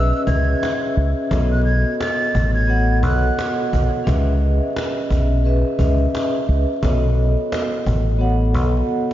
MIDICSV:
0, 0, Header, 1, 5, 480
1, 0, Start_track
1, 0, Tempo, 689655
1, 912, Time_signature, 4, 2, 24, 8
1, 6358, End_track
2, 0, Start_track
2, 0, Title_t, "Flute"
2, 0, Program_c, 0, 73
2, 0, Note_on_c, 0, 88, 92
2, 175, Note_off_c, 0, 88, 0
2, 188, Note_on_c, 0, 92, 82
2, 553, Note_off_c, 0, 92, 0
2, 1056, Note_on_c, 0, 90, 77
2, 1141, Note_off_c, 0, 90, 0
2, 1147, Note_on_c, 0, 92, 76
2, 1365, Note_off_c, 0, 92, 0
2, 1397, Note_on_c, 0, 93, 82
2, 1757, Note_off_c, 0, 93, 0
2, 1771, Note_on_c, 0, 92, 87
2, 2088, Note_off_c, 0, 92, 0
2, 2110, Note_on_c, 0, 90, 89
2, 2474, Note_off_c, 0, 90, 0
2, 6358, End_track
3, 0, Start_track
3, 0, Title_t, "Vibraphone"
3, 0, Program_c, 1, 11
3, 0, Control_c, 1, 64, 127
3, 0, Note_on_c, 1, 61, 74
3, 0, Note_on_c, 1, 68, 69
3, 0, Note_on_c, 1, 71, 69
3, 0, Note_on_c, 1, 73, 75
3, 0, Note_on_c, 1, 75, 72
3, 0, Note_on_c, 1, 76, 85
3, 145, Note_off_c, 1, 61, 0
3, 148, Note_off_c, 1, 68, 0
3, 150, Note_off_c, 1, 71, 0
3, 152, Note_off_c, 1, 75, 0
3, 155, Note_off_c, 1, 76, 0
3, 187, Note_on_c, 1, 61, 75
3, 191, Note_on_c, 1, 68, 64
3, 196, Note_on_c, 1, 71, 60
3, 200, Note_on_c, 1, 75, 68
3, 205, Note_on_c, 1, 76, 80
3, 762, Note_off_c, 1, 61, 0
3, 764, Note_off_c, 1, 68, 0
3, 767, Note_off_c, 1, 71, 0
3, 769, Note_off_c, 1, 75, 0
3, 771, Note_off_c, 1, 76, 0
3, 912, Note_on_c, 1, 59, 75
3, 915, Note_on_c, 1, 66, 69
3, 920, Control_c, 1, 64, 0
3, 920, Note_on_c, 1, 69, 69
3, 924, Note_off_c, 1, 73, 0
3, 924, Note_on_c, 1, 73, 71
3, 929, Note_on_c, 1, 75, 83
3, 1043, Control_c, 1, 64, 127
3, 1658, Note_off_c, 1, 59, 0
3, 1660, Note_off_c, 1, 66, 0
3, 1662, Note_off_c, 1, 69, 0
3, 1664, Note_off_c, 1, 73, 0
3, 1667, Note_off_c, 1, 75, 0
3, 1860, Note_on_c, 1, 59, 85
3, 1864, Note_on_c, 1, 66, 67
3, 1868, Note_on_c, 1, 69, 70
3, 1873, Note_on_c, 1, 73, 72
3, 1877, Note_on_c, 1, 78, 89
3, 2063, Note_off_c, 1, 59, 0
3, 2065, Note_off_c, 1, 66, 0
3, 2067, Note_off_c, 1, 69, 0
3, 2069, Note_off_c, 1, 73, 0
3, 2072, Note_off_c, 1, 78, 0
3, 2118, Note_on_c, 1, 59, 70
3, 2122, Note_on_c, 1, 66, 67
3, 2127, Note_on_c, 1, 69, 59
3, 2131, Note_on_c, 1, 73, 65
3, 2136, Note_on_c, 1, 75, 77
3, 2688, Note_off_c, 1, 59, 0
3, 2690, Note_off_c, 1, 66, 0
3, 2692, Note_off_c, 1, 69, 0
3, 2694, Note_off_c, 1, 73, 0
3, 2697, Note_off_c, 1, 75, 0
3, 2814, Note_on_c, 1, 61, 75
3, 2818, Note_on_c, 1, 68, 70
3, 2823, Note_on_c, 1, 71, 63
3, 2827, Note_on_c, 1, 75, 77
3, 2831, Note_on_c, 1, 76, 86
3, 2841, Control_c, 1, 64, 0
3, 2945, Control_c, 1, 64, 127
3, 3569, Note_off_c, 1, 61, 0
3, 3571, Note_off_c, 1, 68, 0
3, 3573, Note_off_c, 1, 71, 0
3, 3576, Note_off_c, 1, 75, 0
3, 3578, Note_off_c, 1, 76, 0
3, 3786, Note_on_c, 1, 61, 72
3, 3790, Note_on_c, 1, 68, 71
3, 3795, Note_on_c, 1, 71, 69
3, 3799, Note_on_c, 1, 75, 71
3, 3804, Note_on_c, 1, 76, 84
3, 3986, Note_off_c, 1, 61, 0
3, 3988, Note_off_c, 1, 68, 0
3, 3990, Note_off_c, 1, 71, 0
3, 3993, Note_off_c, 1, 75, 0
3, 3995, Note_off_c, 1, 76, 0
3, 4029, Note_on_c, 1, 61, 76
3, 4034, Note_on_c, 1, 68, 66
3, 4038, Note_on_c, 1, 71, 60
3, 4042, Note_on_c, 1, 75, 67
3, 4047, Note_on_c, 1, 76, 81
3, 4603, Note_off_c, 1, 61, 0
3, 4606, Note_off_c, 1, 68, 0
3, 4608, Note_off_c, 1, 71, 0
3, 4609, Note_off_c, 1, 75, 0
3, 4612, Note_off_c, 1, 76, 0
3, 4753, Note_on_c, 1, 59, 73
3, 4757, Note_on_c, 1, 66, 72
3, 4759, Control_c, 1, 64, 0
3, 4761, Note_on_c, 1, 69, 69
3, 4766, Note_on_c, 1, 73, 71
3, 4770, Note_on_c, 1, 75, 79
3, 4893, Control_c, 1, 64, 127
3, 5498, Note_off_c, 1, 59, 0
3, 5500, Note_off_c, 1, 66, 0
3, 5503, Note_off_c, 1, 69, 0
3, 5505, Note_off_c, 1, 73, 0
3, 5507, Note_off_c, 1, 75, 0
3, 5698, Note_on_c, 1, 59, 84
3, 5702, Note_on_c, 1, 66, 64
3, 5707, Note_on_c, 1, 69, 68
3, 5711, Note_on_c, 1, 73, 69
3, 5716, Note_on_c, 1, 78, 86
3, 5902, Note_off_c, 1, 59, 0
3, 5904, Note_off_c, 1, 66, 0
3, 5906, Note_off_c, 1, 69, 0
3, 5909, Note_off_c, 1, 73, 0
3, 5911, Note_off_c, 1, 78, 0
3, 5957, Note_on_c, 1, 59, 74
3, 5961, Note_on_c, 1, 66, 68
3, 5966, Note_on_c, 1, 69, 59
3, 5971, Note_on_c, 1, 73, 65
3, 5975, Note_on_c, 1, 75, 74
3, 6358, Note_off_c, 1, 59, 0
3, 6358, Note_off_c, 1, 66, 0
3, 6358, Note_off_c, 1, 69, 0
3, 6358, Note_off_c, 1, 73, 0
3, 6358, Note_off_c, 1, 75, 0
3, 6358, End_track
4, 0, Start_track
4, 0, Title_t, "Fingered electric bass"
4, 0, Program_c, 2, 33
4, 0, Note_on_c, 2, 35, 93
4, 76, Note_off_c, 2, 35, 0
4, 189, Note_on_c, 2, 37, 95
4, 371, Note_off_c, 2, 37, 0
4, 674, Note_on_c, 2, 37, 97
4, 784, Note_off_c, 2, 37, 0
4, 913, Note_on_c, 2, 35, 115
4, 1275, Note_off_c, 2, 35, 0
4, 1635, Note_on_c, 2, 33, 102
4, 2110, Note_off_c, 2, 33, 0
4, 2110, Note_on_c, 2, 35, 99
4, 2292, Note_off_c, 2, 35, 0
4, 2599, Note_on_c, 2, 35, 100
4, 2707, Note_off_c, 2, 35, 0
4, 2834, Note_on_c, 2, 37, 105
4, 3196, Note_off_c, 2, 37, 0
4, 3554, Note_on_c, 2, 35, 94
4, 3916, Note_off_c, 2, 35, 0
4, 4030, Note_on_c, 2, 37, 98
4, 4212, Note_off_c, 2, 37, 0
4, 4513, Note_on_c, 2, 37, 96
4, 4623, Note_off_c, 2, 37, 0
4, 4753, Note_on_c, 2, 35, 115
4, 5115, Note_off_c, 2, 35, 0
4, 5474, Note_on_c, 2, 33, 97
4, 5949, Note_off_c, 2, 33, 0
4, 5949, Note_on_c, 2, 35, 100
4, 6131, Note_off_c, 2, 35, 0
4, 6358, End_track
5, 0, Start_track
5, 0, Title_t, "Cajon"
5, 188, Note_on_c, 9, 36, 98
5, 257, Note_off_c, 9, 36, 0
5, 437, Note_on_c, 9, 38, 106
5, 507, Note_off_c, 9, 38, 0
5, 670, Note_on_c, 9, 38, 37
5, 740, Note_off_c, 9, 38, 0
5, 912, Note_on_c, 9, 36, 122
5, 981, Note_off_c, 9, 36, 0
5, 1151, Note_on_c, 9, 38, 30
5, 1221, Note_off_c, 9, 38, 0
5, 1396, Note_on_c, 9, 38, 117
5, 1465, Note_off_c, 9, 38, 0
5, 1633, Note_on_c, 9, 36, 94
5, 1703, Note_off_c, 9, 36, 0
5, 1864, Note_on_c, 9, 38, 52
5, 1934, Note_off_c, 9, 38, 0
5, 2108, Note_on_c, 9, 36, 102
5, 2177, Note_off_c, 9, 36, 0
5, 2357, Note_on_c, 9, 38, 105
5, 2427, Note_off_c, 9, 38, 0
5, 2597, Note_on_c, 9, 36, 100
5, 2667, Note_off_c, 9, 36, 0
5, 2832, Note_on_c, 9, 36, 122
5, 2901, Note_off_c, 9, 36, 0
5, 3071, Note_on_c, 9, 38, 29
5, 3141, Note_off_c, 9, 38, 0
5, 3316, Note_on_c, 9, 38, 114
5, 3386, Note_off_c, 9, 38, 0
5, 3553, Note_on_c, 9, 36, 92
5, 3623, Note_off_c, 9, 36, 0
5, 3785, Note_on_c, 9, 38, 52
5, 3855, Note_off_c, 9, 38, 0
5, 4028, Note_on_c, 9, 36, 98
5, 4097, Note_off_c, 9, 36, 0
5, 4278, Note_on_c, 9, 38, 107
5, 4347, Note_off_c, 9, 38, 0
5, 4510, Note_on_c, 9, 38, 36
5, 4580, Note_off_c, 9, 38, 0
5, 4752, Note_on_c, 9, 36, 122
5, 4821, Note_off_c, 9, 36, 0
5, 4991, Note_on_c, 9, 38, 30
5, 5061, Note_off_c, 9, 38, 0
5, 5236, Note_on_c, 9, 38, 117
5, 5306, Note_off_c, 9, 38, 0
5, 5473, Note_on_c, 9, 36, 90
5, 5542, Note_off_c, 9, 36, 0
5, 5703, Note_on_c, 9, 38, 52
5, 5773, Note_off_c, 9, 38, 0
5, 5947, Note_on_c, 9, 36, 100
5, 6017, Note_off_c, 9, 36, 0
5, 6197, Note_on_c, 9, 38, 46
5, 6267, Note_off_c, 9, 38, 0
5, 6358, End_track
0, 0, End_of_file